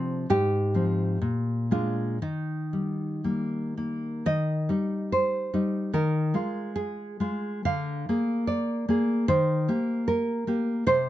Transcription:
nylon-string guitar
Already playing: C3 F3 C4 D4
0.30 G#2 G4
0.74 F3 C4
1.22 A#2
1.71 G#3 D4 F4
2.22 D#3 D#4
2.73 G3
3.24 G3 A#3
3.77 A#3
4.26 D#3 D#5
4.69 G3 D#4
5.12 C5
5.54 G3 D#4
5.94 D#3 A#4
6.34 G#3 F4
6.76 G#4
7.20 G#3 F4
7.65 D3 F5
8.09 A#3 G#4
8.47 D5
8.89 A#3 G#4
9.28 D#3 C5
9.69 A#3 G4
10.08 A#4
10.47 A#3 G4
10.87 C3 C5

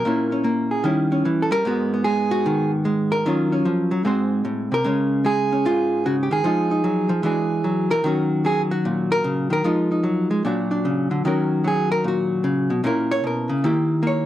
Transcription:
hollow-body jazz guitar
Already playing: A#4
0.05 A#2 A#3 C#4 E4
0.32 C#4
0.44 A#3
0.71 G#4
0.84 D#3 G3 C#4 E4
1.12 C#4
1.25 E3
1.42 A4
1.51 G3 A#4
1.65 G#2 G#3 B3 F#4
1.94 B3
2.04 G#3 G#4
2.31 F#4
2.46 D#3
2.85 G#3
3.12 A#4
3.26 D#3 F#3 C#4 F4
3.52 C#4
3.65 F3
3.91 F#3
4.05 G#2 G#3 C4 F#4 C5
4.45 A2
4.72 C3 A#4
4.84 C#3 G#3 C#4
5.25 G#3 G#4
5.52 C#4
5.65 G#2 F4
6.06 C#3 F#4
6.23 G4
6.31 D#3 G#4
6.44 F3 G#3 D#4 F4
6.71 D#4
6.84 F#3
7.09 F3
7.23 E3 G#3 D4 F#4 G#4
7.64 F#3
7.90 E3 A#4
8.04 D#3 F#3 C#4 F#4
8.45 F#3 G#4
8.71 F#4
8.85 A#2
9.12 A#4
9.24 C#3
9.50 D#3 A#4
9.64 F3 G#3 D#4 F4
9.92 D#4
10.03 F#3
10.31 G#3
10.45 A#2 F#3 D4 F#4
10.71 D4
10.85 C#3
11.11 D3
11.25 D#3 F#3 C#4 F#4 A#4
11.64 F#3 G#4
11.92 A#4
12.04 A#2 F#4
12.44 C#3
12.70 B2
12.84 A#2 A#3 C#4 E4 A#4
13.11 C#5
13.24 B2 A#4
13.49 C#3
13.64 D#3 A#3 E4 G4
14.03 A#3
14.07 C#5

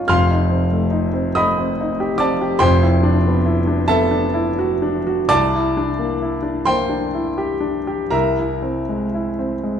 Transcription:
grand piano
Already playing: A#3 C#4 D#4 F4 C#5 A5 C#6
0.08 F1 F2 F5 C6 F6
0.31 D#4
0.50 C4
0.72 A3
0.91 D#4
1.13 C4
1.35 A3 D#5 B5 D#6
1.58 C4
1.81 D#4
2.00 G4
2.18 C4 D5 A5 D6
2.42 G4
2.59 F1 F2 C5 G5 C6
2.82 E4
3.03 D4
3.27 B3
3.45 E4
3.67 D4
3.88 B3 A4 E5 A5
4.11 D4
4.34 E4
4.59 F#4
4.82 D4
5.07 F#4
5.29 C2 D5 A5 D6
5.54 E4
5.77 D4
5.99 A#3
6.22 E4
6.43 D4
6.65 A#3 C5 G5 C6
6.89 D4
7.14 E4
7.38 G4
7.60 D4
7.87 G4
8.10 C2 A#4 E5 A#5
8.39 E4
8.62 C4
8.89 G#3
9.14 E4
9.39 C4
9.63 G#3

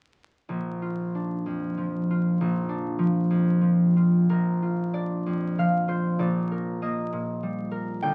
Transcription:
harp
0.49 A#1
0.82 F4
1.15 D4
1.46 F2
1.77 F3
2.11 F4
2.41 A#1
2.69 D4
2.99 F3
3.30 F2
3.61 F3
3.96 F4
4.30 A#1 A#4
4.62 F4
4.93 D4 D5
5.26 F2
5.58 F3 F5
5.88 F4 C5
6.19 A#1 D5
6.51 A#4
6.82 A#3 D#5
7.13 A#2
7.43 G3
7.71 A#4
8.02 D2 G5

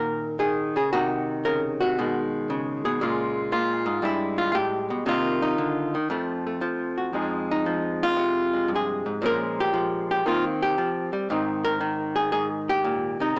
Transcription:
hollow-body jazz guitar
Already playing: A#2 D#3 D#4 F#4 A#4
0.39 D#3 G#4
0.76 C#3 G#4
0.92 C3 D#3 D#4 F#4
1.45 C#3 A#4
1.80 C3 F#4
1.98 B2 D#3 G#3
2.50 C#3
2.85 B2 G#4
3.01 A#2 C#3 G#3 F4
3.52 A#2 F4
3.86 G#2
4.02 G2 G3 G#3 E4
4.38 F4
4.52 A2 F4 G4
4.90 B2
5.06 C3 D#3 A#3 D#4 F4
5.42 D#4
5.58 D3
5.95 D#3
6.10 F2 F3 A3
6.47 A3
6.61 F3
6.97 F#4
7.13 F2 F3 G#3 D#4 G#4
7.51 D#4
7.66 F3
8.03 F4
8.17 C3
8.53 G#3
8.68 G2
8.75 G#4
9.06 G#2
9.21 A#2 F3 G#3 C#4
9.26 A#4
9.60 G4
9.74 F3
10.11 G4
10.26 D#3 A#3 C4 F4
10.62 G4
10.78 F3
11.13 G3
11.30 G#2 D#3 C4 D#4
11.65 A#4
11.81 D#3
12.16 G#4
12.32 G#2 G#4
12.70 G4
12.85 A#2
13.20 C3 D#4

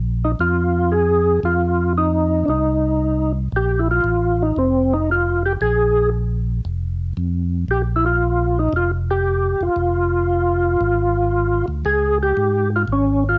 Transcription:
tonewheel organ
Already playing: A#1
0.24 D#4
0.39 F2 F4
0.92 G#4
1.43 F2 F4
1.98 D#4
2.45 C2 D4
2.50 D#4
3.52 A#1 G4
3.79 E4
3.91 F4
4.04 A1
4.42 D#4
4.56 F1 C4
4.93 D#4
5.11 F4
5.46 G4
5.61 A#1 G#4
6.65 F1
7.17 F2
7.68 A#1 G4
7.96 E4
8.06 F4
8.59 D#4
8.73 F1 F4
9.11 G4
9.61 F1 F4
9.76 F1
10.81 G#1
11.68 D2
11.85 C#2 G#4
12.23 G4
12.37 G#2
12.76 F4
12.88 G#1
12.92 C#4
13.29 F4

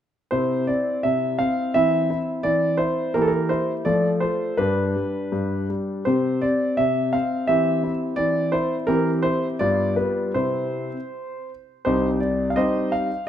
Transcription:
grand piano
0.31 C3 C4 E4 C5
0.67 C4 D5
1.03 C3 E5
1.39 C4 F5
1.74 E3 C4 E4 E5
2.10 E4
2.43 E3 D5
2.77 E4 C5
3.14 E3 A#3 G4 A#4
3.22 A4
3.28 A#4
3.49 E4 C5
3.85 F3 A3 A4 D5
4.20 F4 C5
4.57 G2 D4 G4 B4
4.96 G3
5.32 G2
5.70 G3
6.05 C3 C4 G4 C5
6.41 C4 D5
6.77 C3 E5
7.13 C4 F5
7.47 E3 C4 G4 E5
7.83 E4
8.16 E3 D5
8.52 E4 C5
8.87 E3 C4 G4 A#4
9.23 E4 C5
9.59 G2 B3 F4 D5
9.96 G3 B4
10.34 C3 C4 E4 C5
11.85 C2 C3 D#4 G4 C5
12.20 D5
12.50 F5
12.56 G3 C4 D#4 G4 C5 D#5
12.92 F5

